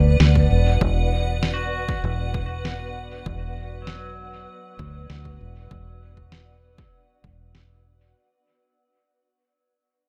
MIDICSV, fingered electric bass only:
0, 0, Header, 1, 2, 480
1, 0, Start_track
1, 0, Tempo, 612245
1, 635, Time_signature, 4, 2, 24, 8
1, 7909, End_track
2, 0, Start_track
2, 0, Title_t, "Fingered electric bass"
2, 0, Program_c, 0, 33
2, 0, Note_on_c, 0, 38, 97
2, 127, Note_off_c, 0, 38, 0
2, 156, Note_on_c, 0, 38, 79
2, 367, Note_off_c, 0, 38, 0
2, 397, Note_on_c, 0, 28, 75
2, 607, Note_off_c, 0, 28, 0
2, 636, Note_on_c, 0, 28, 88
2, 1573, Note_off_c, 0, 28, 0
2, 1597, Note_on_c, 0, 28, 88
2, 2533, Note_off_c, 0, 28, 0
2, 2557, Note_on_c, 0, 28, 85
2, 3493, Note_off_c, 0, 28, 0
2, 3757, Note_on_c, 0, 38, 99
2, 3967, Note_off_c, 0, 38, 0
2, 3998, Note_on_c, 0, 38, 75
2, 4208, Note_off_c, 0, 38, 0
2, 4238, Note_on_c, 0, 28, 73
2, 4448, Note_off_c, 0, 28, 0
2, 4477, Note_on_c, 0, 28, 87
2, 5413, Note_off_c, 0, 28, 0
2, 5676, Note_on_c, 0, 28, 76
2, 6373, Note_off_c, 0, 28, 0
2, 7909, End_track
0, 0, End_of_file